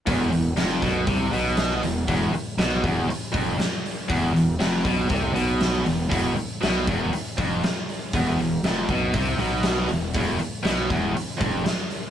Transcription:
0.07 fingered electric bass E1, distorted electric guitar E2, kick, open hi-hat
0.31 fingered electric bass E1, distorted electric guitar E2, open hi-hat
0.57 fingered electric bass F1, distorted electric guitar F2, snare, open hi-hat
0.82 fingered electric bass B1, distorted electric guitar B2, kick, snare, open hi-hat
1.07 fingered electric bass C2, distorted electric guitar C3, kick, open hi-hat
1.32 fingered electric bass B1, distorted electric guitar B2, open hi-hat
1.57 snare, open hi-hat
1.82 fingered electric bass E1, distorted electric guitar E2, open hi-hat
2.08 fingered electric bass E1, distorted electric guitar E2, kick, open hi-hat
2.32 muted fingered electric bass stroke, muted distorted electric guitar stroke, open hi-hat
2.57 fingered electric bass B1, distorted electric guitar B2, snare, open hi-hat
2.84 fingered electric bass E1, distorted electric guitar E2, kick, open hi-hat
3.09 muted distorted electric guitar stroke, muted fingered electric bass stroke, open hi-hat
3.32 fingered electric bass F1, distorted electric guitar F2, kick, open hi-hat
3.58 muted fingered electric bass stroke, muted distorted electric guitar stroke, snare, open hi-hat
3.86 open hi-hat
4.09 fingered electric bass E1, distorted electric guitar E2, kick, open hi-hat
4.33 fingered electric bass E1, distorted electric guitar E2, open hi-hat
4.59 fingered electric bass F1, distorted electric guitar F2, snare, open hi-hat
4.84 fingered electric bass B1, distorted electric guitar B2, kick, open hi-hat
5.09 fingered electric bass C2, distorted electric guitar C3, kick, open hi-hat
5.34 fingered electric bass B1, distorted electric guitar B2, open hi-hat
5.61 snare, open hi-hat
5.85 fingered electric bass E1, distorted electric guitar E2, open hi-hat
6.10 fingered electric bass E1, distorted electric guitar E2, kick, open hi-hat
6.36 muted distorted electric guitar stroke, muted fingered electric bass stroke, open hi-hat
6.62 fingered electric bass B1, distorted electric guitar B2, snare, open hi-hat
6.87 fingered electric bass E1, distorted electric guitar E2, kick, open hi-hat
7.13 muted distorted electric guitar stroke, muted fingered electric bass stroke, open hi-hat
7.38 fingered electric bass F1, distorted electric guitar F2, kick, open hi-hat
7.64 muted fingered electric bass stroke, muted distorted electric guitar stroke, snare, open hi-hat
7.89 open hi-hat
8.13 fingered electric bass E1, distorted electric guitar E2, kick, open hi-hat
8.39 fingered electric bass E1, distorted electric guitar E2, open hi-hat
8.64 fingered electric bass F1, distorted electric guitar F2, snare, open hi-hat
8.89 fingered electric bass B1, distorted electric guitar B2, kick, open hi-hat
9.14 fingered electric bass C2, distorted electric guitar C3, kick, open hi-hat
9.38 fingered electric bass B1, distorted electric guitar B2, open hi-hat
9.63 snare, open hi-hat
9.89 fingered electric bass E1, distorted electric guitar E2, open hi-hat
10.14 fingered electric bass E1, distorted electric guitar E2, kick, open hi-hat
10.39 muted distorted electric guitar stroke, muted fingered electric bass stroke, open hi-hat
10.63 fingered electric bass B1, distorted electric guitar B2, snare, open hi-hat
10.90 fingered electric bass E1, distorted electric guitar E2, kick, snare, open hi-hat
11.15 muted distorted electric guitar stroke, muted fingered electric bass stroke, open hi-hat
11.38 fingered electric bass F1, distorted electric guitar F2, kick, open hi-hat
11.65 muted distorted electric guitar stroke, muted fingered electric bass stroke, snare, open hi-hat
11.91 open hi-hat

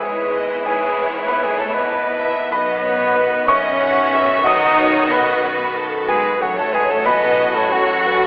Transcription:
Already playing: double bass section G#1, felt piano G#2 G#3 B3 E5, harp G#2 G#3 B3 E4 B4 G#5 B5, viola section E3 B3, violin section E4
0.00 french horn section G#3, cello section G#3, felt piano E4 G#5, cor anglais G#4, flute B4, violin section C#5
0.18 harp B4
0.34 harp E4, felt piano B4, violin section D#5
0.50 harp B3
0.65 harp G#2, felt piano G#2 G#5, french horn section G#3, cello section G#3, cor anglais G#4, flute B4, violin section C#5
0.82 harp G#3
0.96 felt piano G#3, harp B3
1.12 harp E4
1.26 cello section B3, felt piano B3 B5, french horn section B3, cor anglais B4, harp B4, flute E5
1.43 cello section G#3, french horn section G#3, harp E4, cor anglais G#4, flute B4, felt piano G#5
1.58 felt piano G#3 A5, cello section A3, french horn section A3, cor anglais A4, flute C#5
1.73 cello section B3, french horn section B3, cor anglais B4, flute D#5, felt piano B5, harp B5
1.90 felt piano E4, violin section B4
2.06 harp B4
2.21 harp E4, felt piano B4, violin section E5
2.37 harp B3
2.51 felt piano B1 B5, double bass section B1, harp B2, viola section D#3 B3, cello section B3, french horn section B3, violin section F#4 D#5, cor anglais B4, flute D#5
2.68 harp F#3
2.84 felt piano F#2, harp B3, violin section C#5
3.00 harp D#3
3.16 felt piano B3, harp F#4, violin section B4
3.32 harp B4
3.46 felt piano F#2 C#6, cello section C#4, french horn section C#4, cor anglais C#5, violin section D#5, flute E5
3.64 harp F#5
3.80 felt piano D#3, violin section F#5
3.97 harp B4
4.14 felt piano F#4, violin section E5
4.29 harp B3
4.44 felt piano B1 D#6, harp B2, cello section D#4, french horn section D#4, violin section D#5, cor anglais D#5, flute F#5
4.61 harp F#3
4.77 felt piano F#2, harp B3, violin section C#5
5.10 french horn section B3, cello section B3, felt piano B3 B5, harp F#4, cor anglais B4, flute D#5, violin section D#5
5.26 harp B4
5.43 felt piano F#2, violin section B4, harp D#5
5.59 harp F#5
5.74 felt piano D#4, violin section A4, harp D#5
5.91 harp B4
6.08 cello section G#3, french horn section G#3, harp D#4, felt piano F#4 G#5, cor anglais G#4, flute B4, violin section B4
6.24 harp B3
6.41 felt piano A1 F#5, double bass section A1, harp A2, viola section F#3, cello section F#3, french horn section F#3, violin section F#4 C#5, cor anglais F#4, flute A4
6.57 cello section A3, harp A3, french horn section A3, cor anglais A4, flute C#5, felt piano A5
6.73 felt piano A2 G#5, harp F#3, cello section G#3, french horn section G#3, cor anglais G#4, flute B4
6.89 cello section A3, french horn section A3, harp C#4, cor anglais A4, flute C#5, felt piano A5
7.05 felt piano F#3 B5, cello section B3, french horn section B3, harp F#4, cor anglais B4, flute D#5, violin section D#5
7.23 harp C#4
7.39 felt piano A2, harp C#5
7.55 cello section A3, french horn section A3, cor anglais A4, flute C#5, harp F#5, felt piano A5
7.71 cello section F#3, french horn section F#3, felt piano C#4 F#5, cor anglais F#4, flute A4, harp C#5, violin section C#5
7.90 harp F#4
8.06 harp C#4, felt piano F#4, violin section B4

